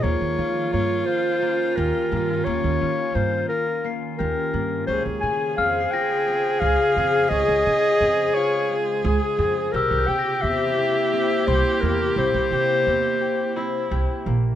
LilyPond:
<<
  \new Staff \with { instrumentName = "Glockenspiel" } { \time 7/8 \key des \lydian \tempo 4 = 86 r2. r8 | r2 c''''4.~ | c''''8 r8 f'''16 c''''16 bes'''2~ | bes'''8. r2 r8. |
e'''16 g'''16 bes'''2 c'''4~ | c'''4.~ c'''16 r4. r16 | }
  \new Staff \with { instrumentName = "Clarinet" } { \time 7/8 \key des \lydian des''4 des''8 c''4 bes'4 | des''4 c''8 bes'8 r8 bes'4 | c''8 aes''8 f''8 g''4 f''4 | ees''4. des''8 r8 aes'4 |
bes'8 g''8 e''4. c''8 bes'8 | c''2. r8 | }
  \new Staff \with { instrumentName = "Viola" } { \time 7/8 \key des \lydian f'2.~ f'8~ | f'2. r8 | aes'2.~ aes'8~ | aes'2.~ aes'8 |
g'2.~ g'8~ | g'2 e'4 r8 | }
  \new Staff \with { instrumentName = "Harp" } { \time 7/8 \key des \lydian bes8 f'8 bes8 f'8 bes8 g'8 bes8 | bes8 f'8 bes8 f'8 bes8 g'8 bes8 | des'8 aes'8 c'8 f'8 c'8 aes'8 c'8 | des'8 aes'8 c'8 f'8 c'8 aes'8 c'8 |
c'8 g'8 c'8 g'8 c'8 g'8 bes8 | c'8 g'8 c'8 g'8 c'8 g'8 bes8 | }
  \new Staff \with { instrumentName = "Ambient pad" } { \time 7/8 \key des \lydian << { <ees f'>2.~ <ees f'>8~ | <ees f'>2.~ <ees f'>8 | c''2.~ c''8 | aes2.~ aes8 |
<bes e'>2.~ <bes e'>8~ | <bes e'>2.~ <bes e'>8 | } \\ { des'2.~ des'8~ | des'2.~ des'8 | des2.~ des8~ | des2.~ des8 |
c2.~ c8~ | c2.~ c8 | } >> }
  \new Staff \with { instrumentName = "Upright bass" } { \clef bass \time 7/8 \key des \lydian ees,16 ees,16 ees8 g,8 r4 ees,16 r16 g,8 | ees,16 ees,16 ees8 g,8 r4 ees,16 r16 g,8 | des,16 des,16 des8 f,8 r4 des,16 r16 f,8 | des,16 des,16 des8 f,8 r4 des,16 r16 f,8 |
c,16 c,16 c8 e,8 r4 c,16 r16 e,8 | c,16 c,16 c8 e,8 r4 c,16 r16 bes,,8 | }
>>